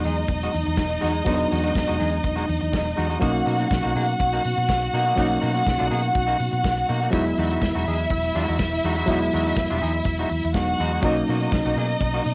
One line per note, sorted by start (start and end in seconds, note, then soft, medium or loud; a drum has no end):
0.00 1.22 F#3 medium
0.00 1.23 G#3 medium
0.00 1.23 B3 medium
0.00 1.24 D#4 medium
0.00 3.18 D#4 medium
0.00 3.19 D#5 medium
0.05 0.23 E2 loud
0.05 0.22 G#3 soft
0.05 0.18 D#4 medium
0.05 0.19 G#4 medium
0.05 open hi-hat medium
0.17 muted clean electric guitar stroke soft
0.17 closed hi-hat soft
0.28 0.47 E1 medium
0.28 muted clean electric guitar stroke soft
0.28 kick medium
0.28 closed hi-hat medium
0.41 0.53 G#3 medium
0.41 0.53 D#4 medium
0.41 0.53 F#4 medium
0.41 closed hi-hat soft
0.53 0.64 E2 medium
0.53 muted clean electric guitar stroke soft
0.53 open hi-hat medium
0.65 0.75 E2 medium
0.65 muted clean electric guitar stroke soft
0.65 closed hi-hat soft
0.77 0.96 E1 loud
0.77 muted clean electric guitar stroke soft
0.77 kick loud
0.77 snare medium
0.90 muted clean electric guitar stroke soft
0.90 closed hi-hat soft
1.01 1.21 E2 medium
1.01 1.21 G#3 medium
1.01 1.15 D#4 medium
1.01 1.14 F#4 medium
1.01 open hi-hat medium
1.14 muted clean electric guitar stroke soft
1.14 closed hi-hat soft
1.25 1.44 E1 loud
1.25 3.17 F#3 medium
1.25 3.18 G#3 medium
1.25 1.46 G#3 medium
1.25 3.19 B3 medium
1.25 1.34 D4 medium
1.25 1.40 D#4 medium
1.25 1.39 F#4 medium
1.25 kick loud
1.25 closed hi-hat medium
1.34 3.22 D#4 medium
1.40 muted clean electric guitar stroke soft
1.40 closed hi-hat soft
1.51 1.70 E2 loud
1.51 1.64 G#3 medium
1.51 1.63 D#4 medium
1.51 1.62 F#4 medium
1.51 open hi-hat medium
1.64 1.74 G#3 medium
1.64 1.74 D#4 medium
1.64 1.75 F#4 medium
1.64 closed hi-hat soft
1.75 1.85 E1 medium
1.75 kick loud
1.75 snare medium
1.88 1.97 E1 medium
1.88 1.98 G#3 medium
1.88 1.98 D#4 medium
1.88 1.99 F#4 medium
1.88 closed hi-hat soft
1.99 2.19 E2 loud
1.99 2.17 G#3 medium
1.99 2.11 D#4 medium
1.99 2.12 G#4 medium
1.99 open hi-hat medium
2.12 muted clean electric guitar stroke soft
2.12 closed hi-hat soft
2.24 2.42 E1 medium
2.24 muted clean electric guitar stroke soft
2.24 kick medium
2.24 closed hi-hat medium
2.36 2.46 G#3 medium
2.36 2.47 D#4 medium
2.36 2.47 F#4 medium
2.36 closed hi-hat soft
2.48 2.58 E2 loud
2.48 muted clean electric guitar stroke soft
2.48 open hi-hat medium
2.61 2.71 E2 medium
2.61 muted clean electric guitar stroke soft
2.61 closed hi-hat soft
2.72 2.92 E1 loud
2.72 muted clean electric guitar stroke soft
2.72 kick medium
2.72 snare loud
2.86 muted clean electric guitar stroke soft
2.86 closed hi-hat soft
2.96 3.16 E2 loud
2.96 3.09 G#3 medium
2.96 3.09 D#4 medium
2.96 3.08 F#4 medium
2.96 open hi-hat medium
3.09 3.20 G#3 soft
3.09 3.20 D#4 medium
3.09 3.20 F#4 medium
3.09 closed hi-hat soft
3.20 3.40 B1 medium
3.20 5.13 F#3 medium
3.20 3.41 A#3 medium
3.20 5.13 A#3 medium
3.20 5.14 C#4 medium
3.20 3.33 D#4 medium
3.20 5.14 D#4 medium
3.20 3.33 F#4 loud
3.20 7.09 F#4 medium
3.20 7.09 F#5 medium
3.20 kick loud
3.20 closed hi-hat medium
3.34 muted clean electric guitar stroke soft
3.34 closed hi-hat soft
3.46 3.65 B2 medium
3.46 3.59 A#3 medium
3.46 3.59 D#4 medium
3.46 3.58 F#4 medium
3.46 open hi-hat medium
3.60 3.69 A#3 medium
3.60 3.69 D#4 medium
3.60 3.70 F#4 medium
3.60 closed hi-hat medium
3.71 3.81 B1 medium
3.71 kick loud
3.71 snare loud
3.83 3.93 B1 medium
3.83 3.94 A#3 medium
3.83 3.95 D#4 medium
3.83 3.96 F#4 medium
3.83 closed hi-hat soft
3.95 4.13 B2 loud
3.95 4.13 A#3 medium
3.95 4.09 D#4 medium
3.95 4.08 G#4 medium
3.95 open hi-hat medium
4.08 muted clean electric guitar stroke soft
4.08 closed hi-hat soft
4.20 4.38 B1 loud
4.20 muted clean electric guitar stroke soft
4.20 kick medium
4.20 closed hi-hat medium
4.33 4.44 A#3 medium
4.33 4.44 D#4 medium
4.33 4.44 F#4 medium
4.33 closed hi-hat medium
4.44 4.54 B2 medium
4.44 muted clean electric guitar stroke soft
4.44 open hi-hat medium
4.57 4.66 B2 medium
4.57 muted clean electric guitar stroke medium
4.57 closed hi-hat soft
4.69 4.87 B1 medium
4.69 muted clean electric guitar stroke soft
4.69 kick loud
4.69 snare loud
4.83 muted clean electric guitar stroke soft
4.83 closed hi-hat soft
4.93 5.11 B2 medium
4.93 5.06 A#3 medium
4.93 5.06 D#4 medium
4.93 5.05 F#4 medium
4.93 open hi-hat medium
5.06 5.17 A#3 medium
5.06 5.18 D#4 medium
5.06 5.18 F#4 medium
5.06 closed hi-hat soft
5.16 5.36 B1 medium
5.16 7.08 F#3 medium
5.16 7.09 A#3 medium
5.16 5.38 A#3 medium
5.16 7.09 C#4 medium
5.16 5.30 D#4 medium
5.16 7.10 D#4 medium
5.16 5.29 F#4 medium
5.16 kick medium
5.16 closed hi-hat medium
5.30 muted clean electric guitar stroke medium
5.30 closed hi-hat soft
5.41 5.61 B2 loud
5.41 5.54 A#3 medium
5.41 5.53 D#4 medium
5.41 5.53 F#4 medium
5.41 open hi-hat medium
5.54 5.65 A#3 soft
5.54 5.65 D#4 medium
5.54 5.65 F#4 medium
5.54 closed hi-hat soft
5.67 5.76 B1 medium
5.67 kick loud
5.67 snare loud
5.79 5.89 B1 loud
5.79 5.89 A#3 medium
5.79 5.90 D#4 medium
5.79 5.91 F#4 medium
5.79 closed hi-hat soft
5.91 6.09 B2 medium
5.91 6.08 A#3 medium
5.91 6.03 D#4 medium
5.91 6.03 G#4 medium
5.91 open hi-hat medium
6.03 muted clean electric guitar stroke soft
6.03 closed hi-hat soft
6.14 6.33 B1 loud
6.14 muted clean electric guitar stroke soft
6.14 kick loud
6.14 closed hi-hat medium
6.27 6.38 A#3 medium
6.27 6.39 D#4 medium
6.27 6.39 F#4 medium
6.27 closed hi-hat medium
6.40 6.49 B2 medium
6.40 open hi-hat medium
6.52 6.61 B2 medium
6.52 muted clean electric guitar stroke soft
6.52 closed hi-hat soft
6.64 6.82 B1 medium
6.64 muted clean electric guitar stroke soft
6.64 kick loud
6.64 snare loud
6.77 muted clean electric guitar stroke soft
6.77 closed hi-hat soft
6.89 7.07 B2 medium
6.89 7.01 A#3 medium
6.89 7.01 D#4 medium
6.89 7.01 F#4 medium
6.89 open hi-hat medium
7.02 7.13 A#3 soft
7.02 7.13 D#4 medium
7.02 7.13 F#4 medium
7.02 closed hi-hat soft
7.10 7.31 E1 medium
7.10 9.03 F#3 medium
7.10 9.03 G#3 medium
7.10 7.33 G#3 medium
7.10 9.04 B3 medium
7.10 7.26 D#4 medium
7.10 10.51 E4 medium
7.10 9.04 E4 medium
7.10 10.51 E5 medium
7.10 kick loud
7.10 closed hi-hat medium
7.15 7.26 F#4 medium
7.27 muted clean electric guitar stroke medium
7.27 closed hi-hat soft
7.38 7.56 E2 medium
7.38 7.51 G#3 medium
7.38 7.50 D#4 medium
7.38 7.50 F#4 medium
7.38 open hi-hat medium
7.50 7.62 G#3 soft
7.50 7.62 D#4 medium
7.50 7.63 F#4 medium
7.50 closed hi-hat soft
7.62 7.72 E1 loud
7.62 kick loud
7.62 snare loud
7.75 7.83 E1 medium
7.75 7.86 G#3 medium
7.75 7.87 D#4 medium
7.75 7.88 F#4 medium
7.75 closed hi-hat soft
7.87 8.05 E2 medium
7.87 8.04 G#3 medium
7.87 8.00 D#4 soft
7.87 8.00 G#4 medium
7.87 open hi-hat medium
7.99 muted clean electric guitar stroke soft
7.99 closed hi-hat soft
8.10 8.29 E1 loud
8.10 muted clean electric guitar stroke soft
8.10 kick loud
8.10 closed hi-hat medium
8.23 muted clean electric guitar stroke soft
8.23 closed hi-hat soft
8.35 8.45 E2 medium
8.35 8.48 G#3 medium
8.35 8.47 D#4 medium
8.35 8.47 F#4 medium
8.35 open hi-hat medium
8.47 8.57 E2 medium
8.47 8.59 G#3 soft
8.47 8.59 D#4 medium
8.47 8.59 F#4 medium
8.47 closed hi-hat soft
8.59 8.78 E1 loud
8.59 kick loud
8.59 snare loud
8.72 muted clean electric guitar stroke soft
8.72 closed hi-hat soft
8.83 9.02 E2 medium
8.83 8.98 G#3 medium
8.83 8.97 D#4 medium
8.83 8.96 F#4 loud
8.83 open hi-hat medium
8.96 9.07 G#3 soft
8.96 9.08 D#4 medium
8.96 9.09 F#4 medium
8.96 closed hi-hat soft
9.06 9.26 E1 medium
9.06 10.50 F#3 medium
9.06 10.51 G#3 medium
9.06 9.28 G#3 medium
9.06 10.52 B3 medium
9.06 9.22 D#4 medium
9.06 10.52 E4 medium
9.06 kick loud
9.06 closed hi-hat medium
9.10 9.21 F#4 loud
9.21 muted clean electric guitar stroke medium
9.21 closed hi-hat soft
9.32 9.51 E2 medium
9.32 9.46 G#3 medium
9.32 9.45 D#4 medium
9.32 9.45 F#4 medium
9.32 open hi-hat medium
9.45 9.57 G#3 soft
9.45 9.58 D#4 medium
9.45 9.58 F#4 medium
9.45 closed hi-hat soft
9.57 9.67 E1 medium
9.57 kick loud
9.57 snare loud
9.69 9.79 E1 loud
9.69 9.80 G#3 medium
9.69 9.80 D#4 medium
9.69 9.82 F#4 medium
9.69 closed hi-hat soft
9.81 10.00 E2 medium
9.81 9.99 G#3 medium
9.81 9.94 D#4 medium
9.81 9.95 G#4 medium
9.81 open hi-hat medium
9.92 muted clean electric guitar stroke soft
9.92 closed hi-hat soft
10.04 10.23 E1 medium
10.04 muted clean electric guitar stroke soft
10.04 kick loud
10.04 closed hi-hat medium
10.17 10.30 G#3 medium
10.17 10.31 D#4 medium
10.17 10.31 F#4 medium
10.17 closed hi-hat soft
10.29 10.40 E2 medium
10.29 open hi-hat medium
10.42 10.52 E2 medium
10.42 muted clean electric guitar stroke soft
10.42 closed hi-hat soft
10.54 10.73 E1 loud
10.54 11.01 F#3 medium
10.54 11.03 G#3 soft
10.54 11.04 B3 soft
10.54 11.03 D#4 medium
10.54 11.02 F#4 medium
10.54 11.02 F#5 medium
10.54 muted clean electric guitar stroke soft
10.54 kick loud
10.54 snare loud
10.67 muted clean electric guitar stroke soft
10.67 closed hi-hat soft
10.78 10.97 E2 medium
10.78 10.93 G#3 medium
10.78 10.93 D#4 medium
10.78 10.93 F#4 medium
10.78 open hi-hat medium
10.90 11.05 F#4 medium
10.90 closed hi-hat soft
10.94 11.05 G#3 soft
10.94 11.05 D#4 medium
11.02 11.21 B1 loud
11.02 12.34 F#3 medium
11.02 12.34 A#3 medium
11.02 11.24 A#3 medium
11.02 12.34 C#4 medium
11.02 12.34 D#4 medium
11.02 12.34 D#5 medium
11.02 kick loud
11.02 closed hi-hat medium
11.06 11.18 D#4 medium
11.06 11.18 F#4 medium
11.16 muted clean electric guitar stroke soft
11.16 closed hi-hat soft
11.28 11.46 B2 medium
11.28 11.42 A#3 medium
11.28 11.42 D#4 medium
11.28 11.41 F#4 medium
11.28 open hi-hat medium
11.41 11.53 A#3 medium
11.41 11.53 D#4 medium
11.41 11.54 F#4 medium
11.41 closed hi-hat soft
11.52 11.62 B1 medium
11.52 muted clean electric guitar stroke soft
11.52 kick loud
11.52 snare loud
11.65 11.73 B1 loud
11.65 11.76 A#3 soft
11.65 11.77 D#4 medium
11.65 11.78 F#4 medium
11.65 closed hi-hat soft
11.76 11.94 B2 medium
11.76 11.94 A#3 medium
11.76 11.89 D#4 medium
11.76 11.89 G#4 medium
11.76 open hi-hat medium
11.89 muted clean electric guitar stroke soft
11.89 closed hi-hat soft
12.00 12.19 B1 loud
12.00 muted clean electric guitar stroke soft
12.00 kick medium
12.00 closed hi-hat medium
12.14 12.23 A#3 medium
12.14 12.24 D#4 medium
12.14 12.25 F#4 medium
12.14 closed hi-hat soft
12.25 12.34 B2 medium
12.25 muted clean electric guitar stroke soft
12.25 open hi-hat medium